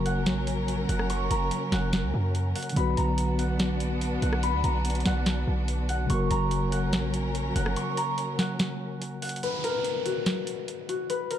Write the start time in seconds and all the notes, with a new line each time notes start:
Already playing: F#1 C#3 F#3 A#3 C#4 F#4 A#4 A#5 C#6
0.06 F#5, closed hi-hat
0.26 A#1, snare, closed hi-hat
0.47 closed hi-hat
0.68 closed hi-hat
0.89 F#1 F#5, closed hi-hat
0.99 cross-stick
1.10 C#6, closed hi-hat
1.31 F#1 A#5, closed hi-hat
1.51 closed hi-hat
1.72 F#1 F#5, snare, closed hi-hat
1.93 snare, closed hi-hat
2.03 C#2
2.14 F#2
2.35 closed hi-hat
2.56 F#5, closed hi-hat, open hi-hat
2.63 closed hi-hat
2.69 D3, closed hi-hat
2.74 B1 F#3 B3 D4 F#4 B5, closed hi-hat
2.78 F#4 B4
2.97 B1 A#5, closed hi-hat
3.18 closed hi-hat
3.39 F#5, closed hi-hat
3.59 snare, closed hi-hat
3.80 closed hi-hat
4.01 closed hi-hat
4.22 B1 F#5, closed hi-hat
4.33 cross-stick
4.43 B5, closed hi-hat
4.54 D2
4.64 B1 A#5, closed hi-hat
4.85 closed hi-hat
4.90 closed hi-hat
4.95 closed hi-hat
5.00 closed hi-hat
5.06 B1 F#5, snare, closed hi-hat
5.26 snare, closed hi-hat
5.47 B1
5.68 closed hi-hat
5.89 F#5, closed hi-hat
6.06 C#3 F#3
6.10 F#1 F#3 A#3 C#4 F#4 A#4 C#6, closed hi-hat
6.14 A#4
6.30 F#1 A#5, closed hi-hat
6.51 closed hi-hat
6.72 F#5, closed hi-hat
6.93 A#1, snare, closed hi-hat
7.14 closed hi-hat
7.35 closed hi-hat
7.56 F#1 F#5, closed hi-hat
7.66 cross-stick
7.76 C#6, closed hi-hat
7.97 A#5, closed hi-hat
8.18 closed hi-hat
8.39 F#5, snare, closed hi-hat
8.59 snare, closed hi-hat
9.02 closed hi-hat
9.22 F#5, closed hi-hat, open hi-hat
9.29 closed hi-hat
9.36 closed hi-hat
9.43 B4, closed hi-hat, downlifter
9.64 A#4, closed hi-hat
9.84 closed hi-hat
10.06 F#4, closed hi-hat
10.26 snare, closed hi-hat
10.47 closed hi-hat
10.68 closed hi-hat
10.89 F#4, closed hi-hat
11.10 B4, closed hi-hat
11.30 A#4, closed hi-hat